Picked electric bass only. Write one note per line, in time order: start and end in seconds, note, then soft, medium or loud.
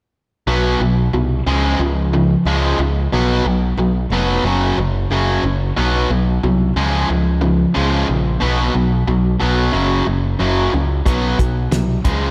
0.47 0.75 B1 medium
0.80 1.08 B1 medium
1.13 1.41 C2 medium
1.46 1.74 C#2 medium
1.79 2.34 C#2 medium
2.45 2.73 C#2 medium
2.79 3.06 C#2 medium
3.13 3.40 B1 medium
3.45 3.73 B1 medium
3.77 4.05 B1 medium
4.10 4.38 F1 medium
4.43 4.71 F#1 medium
4.78 5.05 F#1 medium
5.10 5.38 F#1 medium
5.43 5.71 F#1 medium
5.78 6.05 B1 medium
6.10 6.37 B1 medium
6.44 6.71 C2 medium
6.76 7.04 C#2 medium
7.10 7.64 C#2 medium
7.76 8.03 C#2 medium
8.09 8.36 A#1 medium
8.42 8.69 B1 medium
8.75 9.02 B1 medium
9.07 9.35 B1 medium
9.42 9.69 B1 medium
9.74 10.01 F#1 medium
10.07 10.34 F#1 medium
10.40 10.67 F#1 medium
10.74 11.01 C#2 medium
11.06 11.33 B1 medium
11.39 11.66 B1 medium
11.71 11.99 C2 medium
12.05 12.31 C#2 medium